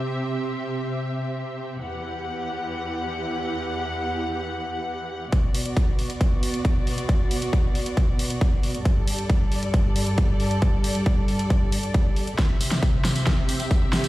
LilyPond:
<<
  \new Staff \with { instrumentName = "String section" } { \time 4/4 \key b \phrygian \tempo 4 = 136 <c c' g' e''>1 | <e, e g' fis''>1~ | <e, e g' fis''>1 | <b, b fis' d''>1~ |
<b, b fis' d''>1 | <g, g a' d''>1~ | <g, g a' d''>1 | <c c' g' e''>1 | }
  \new DrumStaff \with { instrumentName = "Drums" } \drummode { \time 4/4 r4 r4 r4 r4 | r4 r4 r4 r4 | r4 r4 r4 r4 | <hh bd>8 hho16 hh16 <hh bd>8 hho16 hh16 <hh bd>8 hho16 hh16 <hh bd>8 hho16 hh16 |
<hh bd>8 hho16 hh16 <hh bd>8 hho16 hh16 <hh bd>8 hho16 hh16 <hh bd>8 hho16 hh16 | <hh bd>8 hho16 hh16 <hh bd>8 hho16 hh16 <hh bd>8 hho16 hh16 <hh bd>8 hho16 hh16 | <hh bd>8 hho16 hh16 <hh bd>8 hho16 hh16 <hh bd>8 hho16 hh16 <hh bd>8 hho16 hh16 | <hh bd sn tamb>8 <hho tamb>16 <hh sn tamb>16 <hh bd tamb>8 <hho sn tamb>16 <hh tamb>16 <hh bd sn>8 <hho tamb>16 <hh tamb>16 <hh bd tamb>8 <hho sn tamb>16 <hh tamb>16 | }
>>